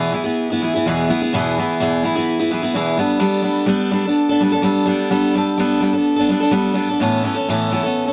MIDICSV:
0, 0, Header, 1, 2, 480
1, 0, Start_track
1, 0, Tempo, 473560
1, 1341, Time_signature, 4, 2, 24, 8
1, 8239, End_track
2, 0, Start_track
2, 0, Title_t, "Steel-string acoustic guitar"
2, 0, Program_c, 0, 25
2, 0, Note_on_c, 0, 40, 79
2, 0, Note_on_c, 0, 47, 80
2, 0, Note_on_c, 0, 52, 84
2, 0, Note_on_c, 0, 59, 84
2, 0, Note_on_c, 0, 64, 82
2, 0, Note_on_c, 0, 68, 77
2, 107, Note_off_c, 0, 52, 0
2, 119, Note_on_c, 0, 52, 59
2, 128, Note_off_c, 0, 59, 0
2, 134, Note_off_c, 0, 64, 0
2, 135, Note_off_c, 0, 47, 0
2, 137, Note_off_c, 0, 40, 0
2, 140, Note_on_c, 0, 59, 60
2, 141, Note_off_c, 0, 68, 0
2, 146, Note_on_c, 0, 64, 67
2, 153, Note_on_c, 0, 68, 66
2, 233, Note_off_c, 0, 68, 0
2, 238, Note_off_c, 0, 64, 0
2, 245, Note_on_c, 0, 68, 55
2, 250, Note_off_c, 0, 52, 0
2, 250, Note_off_c, 0, 59, 0
2, 250, Note_on_c, 0, 64, 51
2, 263, Note_on_c, 0, 59, 47
2, 272, Note_on_c, 0, 52, 47
2, 493, Note_off_c, 0, 68, 0
2, 495, Note_off_c, 0, 64, 0
2, 502, Note_off_c, 0, 59, 0
2, 506, Note_off_c, 0, 52, 0
2, 508, Note_on_c, 0, 68, 57
2, 525, Note_on_c, 0, 64, 55
2, 533, Note_on_c, 0, 59, 50
2, 543, Note_on_c, 0, 52, 44
2, 612, Note_off_c, 0, 52, 0
2, 616, Note_off_c, 0, 59, 0
2, 624, Note_off_c, 0, 68, 0
2, 624, Note_on_c, 0, 52, 61
2, 627, Note_off_c, 0, 64, 0
2, 628, Note_on_c, 0, 59, 55
2, 639, Note_on_c, 0, 64, 63
2, 647, Note_on_c, 0, 68, 61
2, 739, Note_off_c, 0, 68, 0
2, 742, Note_off_c, 0, 52, 0
2, 745, Note_off_c, 0, 59, 0
2, 750, Note_off_c, 0, 64, 0
2, 751, Note_on_c, 0, 68, 53
2, 764, Note_on_c, 0, 64, 51
2, 773, Note_on_c, 0, 59, 51
2, 782, Note_on_c, 0, 52, 51
2, 866, Note_off_c, 0, 68, 0
2, 870, Note_on_c, 0, 40, 74
2, 873, Note_off_c, 0, 64, 0
2, 874, Note_off_c, 0, 52, 0
2, 877, Note_off_c, 0, 59, 0
2, 878, Note_on_c, 0, 47, 81
2, 885, Note_on_c, 0, 64, 89
2, 886, Note_on_c, 0, 52, 74
2, 891, Note_on_c, 0, 59, 77
2, 893, Note_on_c, 0, 68, 90
2, 1078, Note_off_c, 0, 52, 0
2, 1090, Note_on_c, 0, 52, 61
2, 1099, Note_off_c, 0, 59, 0
2, 1105, Note_off_c, 0, 64, 0
2, 1106, Note_off_c, 0, 40, 0
2, 1110, Note_off_c, 0, 47, 0
2, 1112, Note_on_c, 0, 59, 71
2, 1117, Note_off_c, 0, 68, 0
2, 1117, Note_on_c, 0, 64, 71
2, 1128, Note_on_c, 0, 68, 69
2, 1216, Note_off_c, 0, 52, 0
2, 1219, Note_off_c, 0, 64, 0
2, 1220, Note_off_c, 0, 68, 0
2, 1226, Note_off_c, 0, 59, 0
2, 1232, Note_on_c, 0, 64, 49
2, 1232, Note_on_c, 0, 68, 49
2, 1247, Note_on_c, 0, 59, 48
2, 1249, Note_on_c, 0, 52, 39
2, 1345, Note_on_c, 0, 40, 81
2, 1346, Note_off_c, 0, 64, 0
2, 1347, Note_off_c, 0, 68, 0
2, 1348, Note_off_c, 0, 52, 0
2, 1351, Note_off_c, 0, 59, 0
2, 1353, Note_on_c, 0, 47, 85
2, 1360, Note_on_c, 0, 52, 83
2, 1363, Note_on_c, 0, 59, 89
2, 1366, Note_on_c, 0, 64, 94
2, 1373, Note_on_c, 0, 68, 98
2, 1583, Note_off_c, 0, 40, 0
2, 1584, Note_off_c, 0, 52, 0
2, 1587, Note_off_c, 0, 47, 0
2, 1592, Note_off_c, 0, 59, 0
2, 1594, Note_off_c, 0, 64, 0
2, 1596, Note_on_c, 0, 52, 67
2, 1598, Note_off_c, 0, 68, 0
2, 1615, Note_on_c, 0, 59, 72
2, 1622, Note_on_c, 0, 64, 71
2, 1635, Note_on_c, 0, 68, 71
2, 1821, Note_off_c, 0, 52, 0
2, 1825, Note_on_c, 0, 40, 83
2, 1828, Note_off_c, 0, 59, 0
2, 1830, Note_on_c, 0, 47, 77
2, 1831, Note_off_c, 0, 64, 0
2, 1833, Note_on_c, 0, 52, 80
2, 1840, Note_on_c, 0, 59, 91
2, 1843, Note_off_c, 0, 68, 0
2, 1843, Note_on_c, 0, 64, 77
2, 1855, Note_on_c, 0, 68, 93
2, 2047, Note_off_c, 0, 52, 0
2, 2059, Note_off_c, 0, 59, 0
2, 2059, Note_on_c, 0, 52, 62
2, 2064, Note_off_c, 0, 40, 0
2, 2065, Note_off_c, 0, 64, 0
2, 2066, Note_off_c, 0, 47, 0
2, 2071, Note_on_c, 0, 59, 73
2, 2078, Note_off_c, 0, 68, 0
2, 2078, Note_on_c, 0, 64, 68
2, 2091, Note_on_c, 0, 68, 72
2, 2170, Note_off_c, 0, 68, 0
2, 2176, Note_off_c, 0, 64, 0
2, 2181, Note_off_c, 0, 52, 0
2, 2183, Note_on_c, 0, 68, 55
2, 2187, Note_off_c, 0, 59, 0
2, 2188, Note_on_c, 0, 64, 54
2, 2206, Note_on_c, 0, 52, 47
2, 2209, Note_on_c, 0, 59, 49
2, 2413, Note_off_c, 0, 68, 0
2, 2417, Note_off_c, 0, 64, 0
2, 2422, Note_off_c, 0, 59, 0
2, 2425, Note_on_c, 0, 68, 53
2, 2429, Note_on_c, 0, 64, 52
2, 2434, Note_off_c, 0, 52, 0
2, 2435, Note_on_c, 0, 59, 49
2, 2451, Note_on_c, 0, 52, 42
2, 2522, Note_off_c, 0, 52, 0
2, 2534, Note_off_c, 0, 59, 0
2, 2534, Note_on_c, 0, 52, 58
2, 2544, Note_off_c, 0, 68, 0
2, 2545, Note_off_c, 0, 64, 0
2, 2546, Note_on_c, 0, 59, 67
2, 2563, Note_on_c, 0, 68, 65
2, 2569, Note_on_c, 0, 64, 65
2, 2643, Note_off_c, 0, 68, 0
2, 2653, Note_off_c, 0, 64, 0
2, 2656, Note_on_c, 0, 68, 56
2, 2658, Note_off_c, 0, 52, 0
2, 2664, Note_off_c, 0, 59, 0
2, 2665, Note_on_c, 0, 64, 51
2, 2676, Note_on_c, 0, 59, 48
2, 2679, Note_on_c, 0, 52, 49
2, 2777, Note_on_c, 0, 40, 84
2, 2779, Note_off_c, 0, 64, 0
2, 2779, Note_off_c, 0, 68, 0
2, 2783, Note_off_c, 0, 59, 0
2, 2785, Note_on_c, 0, 47, 75
2, 2787, Note_off_c, 0, 52, 0
2, 2791, Note_on_c, 0, 64, 84
2, 2795, Note_on_c, 0, 59, 88
2, 2799, Note_on_c, 0, 52, 80
2, 2802, Note_on_c, 0, 68, 88
2, 3007, Note_off_c, 0, 52, 0
2, 3011, Note_on_c, 0, 55, 65
2, 3015, Note_off_c, 0, 59, 0
2, 3020, Note_off_c, 0, 40, 0
2, 3023, Note_off_c, 0, 47, 0
2, 3025, Note_off_c, 0, 64, 0
2, 3028, Note_on_c, 0, 59, 72
2, 3030, Note_on_c, 0, 62, 67
2, 3032, Note_off_c, 0, 68, 0
2, 3040, Note_on_c, 0, 69, 73
2, 3223, Note_off_c, 0, 59, 0
2, 3225, Note_off_c, 0, 55, 0
2, 3229, Note_off_c, 0, 62, 0
2, 3235, Note_on_c, 0, 59, 84
2, 3237, Note_on_c, 0, 55, 87
2, 3242, Note_off_c, 0, 69, 0
2, 3242, Note_on_c, 0, 62, 88
2, 3254, Note_on_c, 0, 69, 88
2, 3455, Note_off_c, 0, 55, 0
2, 3468, Note_on_c, 0, 55, 62
2, 3470, Note_off_c, 0, 59, 0
2, 3474, Note_off_c, 0, 62, 0
2, 3482, Note_on_c, 0, 59, 69
2, 3487, Note_on_c, 0, 62, 79
2, 3489, Note_off_c, 0, 69, 0
2, 3501, Note_on_c, 0, 69, 68
2, 3698, Note_off_c, 0, 55, 0
2, 3710, Note_on_c, 0, 55, 86
2, 3715, Note_off_c, 0, 59, 0
2, 3717, Note_off_c, 0, 62, 0
2, 3725, Note_off_c, 0, 69, 0
2, 3727, Note_on_c, 0, 59, 83
2, 3730, Note_on_c, 0, 62, 80
2, 3737, Note_on_c, 0, 69, 89
2, 3953, Note_off_c, 0, 55, 0
2, 3958, Note_off_c, 0, 59, 0
2, 3966, Note_on_c, 0, 55, 67
2, 3970, Note_on_c, 0, 59, 71
2, 3976, Note_off_c, 0, 62, 0
2, 3980, Note_off_c, 0, 69, 0
2, 3987, Note_on_c, 0, 62, 67
2, 3991, Note_on_c, 0, 69, 75
2, 4094, Note_off_c, 0, 55, 0
2, 4096, Note_off_c, 0, 59, 0
2, 4097, Note_off_c, 0, 69, 0
2, 4105, Note_off_c, 0, 62, 0
2, 4109, Note_on_c, 0, 69, 58
2, 4131, Note_on_c, 0, 62, 50
2, 4146, Note_on_c, 0, 59, 44
2, 4341, Note_off_c, 0, 69, 0
2, 4353, Note_on_c, 0, 69, 61
2, 4357, Note_off_c, 0, 62, 0
2, 4364, Note_off_c, 0, 59, 0
2, 4367, Note_on_c, 0, 62, 50
2, 4376, Note_on_c, 0, 59, 46
2, 4464, Note_off_c, 0, 59, 0
2, 4466, Note_on_c, 0, 55, 57
2, 4468, Note_off_c, 0, 69, 0
2, 4475, Note_off_c, 0, 62, 0
2, 4476, Note_on_c, 0, 59, 66
2, 4493, Note_on_c, 0, 62, 65
2, 4494, Note_on_c, 0, 69, 64
2, 4570, Note_off_c, 0, 69, 0
2, 4582, Note_on_c, 0, 69, 57
2, 4585, Note_off_c, 0, 55, 0
2, 4589, Note_off_c, 0, 59, 0
2, 4595, Note_off_c, 0, 62, 0
2, 4607, Note_on_c, 0, 62, 49
2, 4622, Note_on_c, 0, 59, 44
2, 4684, Note_off_c, 0, 59, 0
2, 4686, Note_on_c, 0, 55, 86
2, 4694, Note_off_c, 0, 62, 0
2, 4696, Note_on_c, 0, 59, 80
2, 4697, Note_off_c, 0, 69, 0
2, 4706, Note_on_c, 0, 62, 80
2, 4709, Note_on_c, 0, 69, 95
2, 4910, Note_off_c, 0, 55, 0
2, 4922, Note_on_c, 0, 55, 70
2, 4925, Note_off_c, 0, 59, 0
2, 4930, Note_off_c, 0, 62, 0
2, 4932, Note_off_c, 0, 69, 0
2, 4938, Note_on_c, 0, 59, 68
2, 4942, Note_on_c, 0, 62, 74
2, 4944, Note_on_c, 0, 69, 66
2, 5161, Note_off_c, 0, 55, 0
2, 5167, Note_off_c, 0, 59, 0
2, 5168, Note_off_c, 0, 62, 0
2, 5173, Note_on_c, 0, 55, 85
2, 5174, Note_off_c, 0, 69, 0
2, 5179, Note_on_c, 0, 59, 89
2, 5180, Note_on_c, 0, 62, 91
2, 5186, Note_on_c, 0, 69, 91
2, 5410, Note_off_c, 0, 55, 0
2, 5421, Note_off_c, 0, 59, 0
2, 5421, Note_off_c, 0, 62, 0
2, 5423, Note_on_c, 0, 55, 69
2, 5424, Note_off_c, 0, 69, 0
2, 5431, Note_on_c, 0, 59, 67
2, 5443, Note_on_c, 0, 62, 66
2, 5451, Note_on_c, 0, 69, 82
2, 5641, Note_off_c, 0, 55, 0
2, 5653, Note_on_c, 0, 55, 82
2, 5660, Note_off_c, 0, 69, 0
2, 5662, Note_off_c, 0, 59, 0
2, 5664, Note_off_c, 0, 62, 0
2, 5672, Note_on_c, 0, 69, 92
2, 5674, Note_on_c, 0, 59, 86
2, 5676, Note_on_c, 0, 62, 94
2, 5872, Note_off_c, 0, 55, 0
2, 5884, Note_on_c, 0, 55, 60
2, 5892, Note_off_c, 0, 59, 0
2, 5896, Note_off_c, 0, 62, 0
2, 5904, Note_on_c, 0, 59, 70
2, 5907, Note_off_c, 0, 69, 0
2, 5908, Note_on_c, 0, 62, 67
2, 5919, Note_on_c, 0, 69, 73
2, 5999, Note_off_c, 0, 69, 0
2, 6011, Note_on_c, 0, 69, 57
2, 6013, Note_off_c, 0, 55, 0
2, 6018, Note_off_c, 0, 62, 0
2, 6023, Note_off_c, 0, 59, 0
2, 6031, Note_on_c, 0, 62, 51
2, 6054, Note_on_c, 0, 59, 47
2, 6234, Note_off_c, 0, 69, 0
2, 6247, Note_on_c, 0, 69, 54
2, 6264, Note_off_c, 0, 62, 0
2, 6275, Note_off_c, 0, 59, 0
2, 6276, Note_on_c, 0, 62, 55
2, 6288, Note_on_c, 0, 59, 48
2, 6370, Note_on_c, 0, 55, 60
2, 6373, Note_off_c, 0, 59, 0
2, 6375, Note_off_c, 0, 69, 0
2, 6386, Note_on_c, 0, 59, 65
2, 6390, Note_off_c, 0, 62, 0
2, 6402, Note_on_c, 0, 62, 67
2, 6408, Note_on_c, 0, 69, 68
2, 6476, Note_off_c, 0, 69, 0
2, 6488, Note_on_c, 0, 69, 64
2, 6496, Note_off_c, 0, 55, 0
2, 6500, Note_off_c, 0, 62, 0
2, 6504, Note_off_c, 0, 59, 0
2, 6512, Note_on_c, 0, 62, 54
2, 6519, Note_on_c, 0, 59, 50
2, 6596, Note_off_c, 0, 59, 0
2, 6600, Note_on_c, 0, 55, 84
2, 6604, Note_off_c, 0, 62, 0
2, 6608, Note_on_c, 0, 59, 85
2, 6615, Note_off_c, 0, 69, 0
2, 6616, Note_on_c, 0, 62, 86
2, 6636, Note_on_c, 0, 69, 90
2, 6817, Note_off_c, 0, 55, 0
2, 6829, Note_on_c, 0, 55, 63
2, 6832, Note_off_c, 0, 59, 0
2, 6844, Note_on_c, 0, 59, 76
2, 6845, Note_off_c, 0, 62, 0
2, 6854, Note_off_c, 0, 69, 0
2, 6858, Note_on_c, 0, 62, 69
2, 6866, Note_on_c, 0, 69, 74
2, 6966, Note_off_c, 0, 55, 0
2, 6972, Note_off_c, 0, 69, 0
2, 6973, Note_off_c, 0, 59, 0
2, 6980, Note_off_c, 0, 62, 0
2, 6984, Note_on_c, 0, 69, 55
2, 7001, Note_on_c, 0, 62, 49
2, 7024, Note_on_c, 0, 59, 46
2, 7093, Note_on_c, 0, 45, 85
2, 7095, Note_off_c, 0, 59, 0
2, 7103, Note_on_c, 0, 52, 82
2, 7104, Note_off_c, 0, 69, 0
2, 7107, Note_off_c, 0, 62, 0
2, 7108, Note_on_c, 0, 59, 83
2, 7111, Note_on_c, 0, 61, 84
2, 7120, Note_on_c, 0, 69, 90
2, 7316, Note_off_c, 0, 52, 0
2, 7323, Note_off_c, 0, 59, 0
2, 7328, Note_on_c, 0, 52, 65
2, 7331, Note_off_c, 0, 61, 0
2, 7335, Note_on_c, 0, 59, 64
2, 7338, Note_off_c, 0, 45, 0
2, 7344, Note_off_c, 0, 69, 0
2, 7344, Note_on_c, 0, 61, 73
2, 7356, Note_on_c, 0, 69, 68
2, 7433, Note_off_c, 0, 69, 0
2, 7445, Note_on_c, 0, 69, 58
2, 7446, Note_off_c, 0, 61, 0
2, 7456, Note_off_c, 0, 52, 0
2, 7458, Note_on_c, 0, 61, 47
2, 7459, Note_off_c, 0, 59, 0
2, 7474, Note_on_c, 0, 59, 42
2, 7574, Note_off_c, 0, 69, 0
2, 7581, Note_off_c, 0, 61, 0
2, 7583, Note_on_c, 0, 45, 80
2, 7588, Note_off_c, 0, 59, 0
2, 7595, Note_on_c, 0, 61, 80
2, 7598, Note_on_c, 0, 52, 78
2, 7599, Note_on_c, 0, 59, 90
2, 7609, Note_on_c, 0, 69, 86
2, 7803, Note_off_c, 0, 52, 0
2, 7816, Note_on_c, 0, 52, 62
2, 7817, Note_off_c, 0, 59, 0
2, 7820, Note_off_c, 0, 61, 0
2, 7823, Note_off_c, 0, 45, 0
2, 7829, Note_on_c, 0, 59, 67
2, 7832, Note_on_c, 0, 61, 70
2, 7836, Note_off_c, 0, 69, 0
2, 7847, Note_on_c, 0, 69, 73
2, 7925, Note_off_c, 0, 69, 0
2, 7938, Note_on_c, 0, 69, 51
2, 7939, Note_off_c, 0, 52, 0
2, 7943, Note_off_c, 0, 61, 0
2, 7946, Note_off_c, 0, 59, 0
2, 7955, Note_on_c, 0, 61, 51
2, 7970, Note_on_c, 0, 59, 46
2, 8155, Note_off_c, 0, 69, 0
2, 8168, Note_on_c, 0, 69, 54
2, 8177, Note_off_c, 0, 61, 0
2, 8189, Note_on_c, 0, 61, 49
2, 8192, Note_off_c, 0, 59, 0
2, 8204, Note_on_c, 0, 59, 46
2, 8239, Note_off_c, 0, 59, 0
2, 8239, Note_off_c, 0, 61, 0
2, 8239, Note_off_c, 0, 69, 0
2, 8239, End_track
0, 0, End_of_file